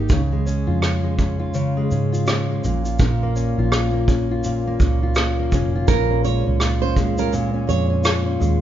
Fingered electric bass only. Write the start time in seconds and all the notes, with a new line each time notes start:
0.10 C#2
0.68 F2
1.91 G#2
2.64 A#1
3.58 A#1
4.80 C#2
5.53 F1
5.88 A#1
6.47 C#2
7.69 F2
8.41 D#2